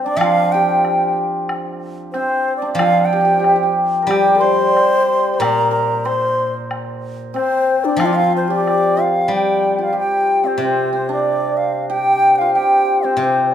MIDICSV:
0, 0, Header, 1, 6, 480
1, 0, Start_track
1, 0, Tempo, 643777
1, 148, Time_signature, 2, 2, 24, 8
1, 2068, Tempo, 651466
1, 10004, End_track
2, 0, Start_track
2, 0, Title_t, "Bansuri"
2, 0, Program_c, 0, 73
2, 23, Note_on_c, 0, 74, 79
2, 139, Note_on_c, 0, 77, 100
2, 150, Note_off_c, 0, 74, 0
2, 386, Note_on_c, 0, 79, 79
2, 397, Note_off_c, 0, 77, 0
2, 862, Note_off_c, 0, 79, 0
2, 1580, Note_on_c, 0, 72, 76
2, 1909, Note_off_c, 0, 72, 0
2, 1913, Note_on_c, 0, 74, 72
2, 2033, Note_off_c, 0, 74, 0
2, 2038, Note_on_c, 0, 77, 97
2, 2270, Note_on_c, 0, 79, 79
2, 2281, Note_off_c, 0, 77, 0
2, 2771, Note_off_c, 0, 79, 0
2, 3028, Note_on_c, 0, 79, 85
2, 3255, Note_off_c, 0, 79, 0
2, 3260, Note_on_c, 0, 84, 84
2, 4000, Note_on_c, 0, 82, 95
2, 4011, Note_off_c, 0, 84, 0
2, 4229, Note_off_c, 0, 82, 0
2, 4234, Note_on_c, 0, 82, 74
2, 4482, Note_on_c, 0, 84, 77
2, 4493, Note_off_c, 0, 82, 0
2, 4836, Note_off_c, 0, 84, 0
2, 5428, Note_on_c, 0, 72, 75
2, 5794, Note_on_c, 0, 74, 68
2, 5805, Note_off_c, 0, 72, 0
2, 5907, Note_on_c, 0, 77, 92
2, 5918, Note_off_c, 0, 74, 0
2, 5959, Note_on_c, 0, 74, 76
2, 5970, Note_off_c, 0, 77, 0
2, 6027, Note_on_c, 0, 77, 93
2, 6038, Note_off_c, 0, 74, 0
2, 6157, Note_off_c, 0, 77, 0
2, 6188, Note_on_c, 0, 72, 65
2, 6293, Note_on_c, 0, 74, 77
2, 6304, Note_off_c, 0, 72, 0
2, 6668, Note_on_c, 0, 77, 70
2, 6679, Note_off_c, 0, 74, 0
2, 6897, Note_off_c, 0, 77, 0
2, 6910, Note_on_c, 0, 79, 80
2, 7269, Note_on_c, 0, 77, 70
2, 7280, Note_off_c, 0, 79, 0
2, 7374, Note_off_c, 0, 77, 0
2, 7384, Note_on_c, 0, 79, 76
2, 7730, Note_on_c, 0, 72, 67
2, 7741, Note_off_c, 0, 79, 0
2, 7843, Note_off_c, 0, 72, 0
2, 7860, Note_on_c, 0, 72, 74
2, 8072, Note_off_c, 0, 72, 0
2, 8084, Note_on_c, 0, 72, 62
2, 8196, Note_on_c, 0, 74, 73
2, 8207, Note_off_c, 0, 72, 0
2, 8549, Note_on_c, 0, 77, 71
2, 8560, Note_off_c, 0, 74, 0
2, 8781, Note_off_c, 0, 77, 0
2, 8786, Note_on_c, 0, 79, 85
2, 9127, Note_off_c, 0, 79, 0
2, 9127, Note_on_c, 0, 79, 53
2, 9146, Note_on_c, 0, 77, 78
2, 9157, Note_off_c, 0, 79, 0
2, 9257, Note_off_c, 0, 77, 0
2, 9261, Note_on_c, 0, 79, 82
2, 9624, Note_on_c, 0, 72, 69
2, 9635, Note_off_c, 0, 79, 0
2, 9742, Note_off_c, 0, 72, 0
2, 9746, Note_on_c, 0, 72, 73
2, 9980, Note_on_c, 0, 74, 68
2, 9991, Note_off_c, 0, 72, 0
2, 10004, Note_off_c, 0, 74, 0
2, 10004, End_track
3, 0, Start_track
3, 0, Title_t, "Hammered dulcimer"
3, 0, Program_c, 1, 15
3, 0, Note_on_c, 1, 55, 66
3, 0, Note_on_c, 1, 60, 59
3, 44, Note_on_c, 1, 62, 64
3, 151, Note_on_c, 1, 65, 65
3, 196, Note_off_c, 1, 55, 0
3, 403, Note_on_c, 1, 67, 73
3, 1594, Note_off_c, 1, 60, 0
3, 1597, Note_on_c, 1, 60, 64
3, 1950, Note_off_c, 1, 62, 0
3, 1953, Note_on_c, 1, 62, 62
3, 2077, Note_off_c, 1, 65, 0
3, 2080, Note_on_c, 1, 65, 71
3, 2325, Note_off_c, 1, 67, 0
3, 2328, Note_on_c, 1, 67, 69
3, 2385, Note_off_c, 1, 67, 0
3, 2388, Note_on_c, 1, 67, 49
3, 2416, Note_off_c, 1, 67, 0
3, 2419, Note_on_c, 1, 67, 61
3, 2482, Note_off_c, 1, 67, 0
3, 2485, Note_on_c, 1, 67, 48
3, 2525, Note_off_c, 1, 67, 0
3, 2528, Note_on_c, 1, 67, 54
3, 2592, Note_off_c, 1, 67, 0
3, 2595, Note_on_c, 1, 67, 55
3, 2644, Note_off_c, 1, 67, 0
3, 2647, Note_on_c, 1, 67, 53
3, 2696, Note_off_c, 1, 67, 0
3, 2698, Note_on_c, 1, 67, 49
3, 2987, Note_on_c, 1, 70, 43
3, 3034, Note_off_c, 1, 67, 0
3, 3037, Note_on_c, 1, 67, 71
3, 3229, Note_on_c, 1, 74, 64
3, 3272, Note_on_c, 1, 72, 71
3, 3954, Note_off_c, 1, 72, 0
3, 3957, Note_on_c, 1, 72, 43
3, 4008, Note_off_c, 1, 70, 0
3, 4011, Note_on_c, 1, 70, 65
3, 4229, Note_off_c, 1, 70, 0
3, 4232, Note_on_c, 1, 70, 65
3, 4481, Note_off_c, 1, 72, 0
3, 4484, Note_on_c, 1, 72, 68
3, 4552, Note_off_c, 1, 60, 0
3, 4562, Note_off_c, 1, 65, 0
3, 4702, Note_off_c, 1, 62, 0
3, 5042, Note_off_c, 1, 74, 0
3, 5349, Note_off_c, 1, 67, 0
3, 5432, Note_on_c, 1, 60, 63
3, 5925, Note_on_c, 1, 65, 78
3, 6009, Note_off_c, 1, 65, 0
3, 6012, Note_on_c, 1, 65, 68
3, 6289, Note_on_c, 1, 67, 73
3, 6320, Note_off_c, 1, 70, 0
3, 6429, Note_off_c, 1, 72, 0
3, 6631, Note_off_c, 1, 65, 0
3, 6634, Note_on_c, 1, 65, 66
3, 6884, Note_off_c, 1, 67, 0
3, 6887, Note_on_c, 1, 67, 58
3, 7232, Note_off_c, 1, 65, 0
3, 7235, Note_on_c, 1, 65, 52
3, 7336, Note_off_c, 1, 67, 0
3, 7339, Note_on_c, 1, 67, 63
3, 7709, Note_off_c, 1, 60, 0
3, 7712, Note_on_c, 1, 60, 58
3, 7839, Note_off_c, 1, 60, 0
3, 7842, Note_on_c, 1, 60, 60
3, 8072, Note_off_c, 1, 60, 0
3, 8075, Note_on_c, 1, 60, 58
3, 8195, Note_on_c, 1, 62, 60
3, 8786, Note_off_c, 1, 67, 0
3, 8789, Note_on_c, 1, 67, 71
3, 9166, Note_off_c, 1, 65, 0
3, 9169, Note_on_c, 1, 65, 62
3, 9270, Note_off_c, 1, 67, 0
3, 9273, Note_on_c, 1, 67, 69
3, 9629, Note_off_c, 1, 60, 0
3, 9632, Note_on_c, 1, 60, 53
3, 9740, Note_off_c, 1, 60, 0
3, 9743, Note_on_c, 1, 60, 66
3, 10004, Note_off_c, 1, 60, 0
3, 10004, Note_off_c, 1, 62, 0
3, 10004, Note_off_c, 1, 65, 0
3, 10004, Note_off_c, 1, 67, 0
3, 10004, End_track
4, 0, Start_track
4, 0, Title_t, "Xiao"
4, 0, Program_c, 2, 77
4, 3028, Note_on_c, 2, 67, 69
4, 3282, Note_on_c, 2, 72, 92
4, 3293, Note_off_c, 2, 67, 0
4, 4000, Note_on_c, 2, 70, 72
4, 4011, Note_off_c, 2, 72, 0
4, 4495, Note_on_c, 2, 72, 64
4, 4506, Note_off_c, 2, 70, 0
4, 4843, Note_off_c, 2, 72, 0
4, 5437, Note_on_c, 2, 72, 72
4, 5806, Note_on_c, 2, 62, 71
4, 5817, Note_off_c, 2, 72, 0
4, 5924, Note_on_c, 2, 65, 63
4, 5935, Note_off_c, 2, 62, 0
4, 6017, Note_off_c, 2, 65, 0
4, 6027, Note_on_c, 2, 65, 60
4, 6275, Note_on_c, 2, 67, 70
4, 6286, Note_off_c, 2, 65, 0
4, 6642, Note_off_c, 2, 67, 0
4, 10004, End_track
5, 0, Start_track
5, 0, Title_t, "Guzheng"
5, 0, Program_c, 3, 107
5, 123, Note_on_c, 3, 53, 62
5, 1571, Note_off_c, 3, 53, 0
5, 2048, Note_on_c, 3, 53, 68
5, 3021, Note_on_c, 3, 55, 66
5, 3513, Note_off_c, 3, 53, 0
5, 4001, Note_on_c, 3, 46, 65
5, 4473, Note_off_c, 3, 55, 0
5, 5425, Note_off_c, 3, 46, 0
5, 5893, Note_on_c, 3, 53, 71
5, 6863, Note_on_c, 3, 55, 61
5, 7355, Note_off_c, 3, 53, 0
5, 7817, Note_on_c, 3, 48, 62
5, 8304, Note_off_c, 3, 55, 0
5, 9254, Note_off_c, 3, 48, 0
5, 9725, Note_on_c, 3, 48, 60
5, 10004, Note_off_c, 3, 48, 0
5, 10004, End_track
6, 0, Start_track
6, 0, Title_t, "Drums"
6, 157, Note_on_c, 9, 76, 72
6, 231, Note_off_c, 9, 76, 0
6, 632, Note_on_c, 9, 76, 41
6, 706, Note_off_c, 9, 76, 0
6, 1113, Note_on_c, 9, 76, 58
6, 1187, Note_off_c, 9, 76, 0
6, 1594, Note_on_c, 9, 76, 41
6, 1668, Note_off_c, 9, 76, 0
6, 2081, Note_on_c, 9, 76, 69
6, 2155, Note_off_c, 9, 76, 0
6, 2560, Note_on_c, 9, 76, 36
6, 2560, Note_on_c, 9, 77, 40
6, 2634, Note_off_c, 9, 76, 0
6, 2634, Note_off_c, 9, 77, 0
6, 3050, Note_on_c, 9, 76, 54
6, 3124, Note_off_c, 9, 76, 0
6, 3536, Note_on_c, 9, 76, 37
6, 3610, Note_off_c, 9, 76, 0
6, 4017, Note_on_c, 9, 76, 63
6, 4090, Note_off_c, 9, 76, 0
6, 4487, Note_on_c, 9, 76, 44
6, 4561, Note_off_c, 9, 76, 0
6, 4967, Note_on_c, 9, 76, 55
6, 5041, Note_off_c, 9, 76, 0
6, 5449, Note_on_c, 9, 76, 40
6, 5523, Note_off_c, 9, 76, 0
6, 5917, Note_on_c, 9, 76, 62
6, 5991, Note_off_c, 9, 76, 0
6, 6416, Note_on_c, 9, 76, 44
6, 6490, Note_off_c, 9, 76, 0
6, 10004, End_track
0, 0, End_of_file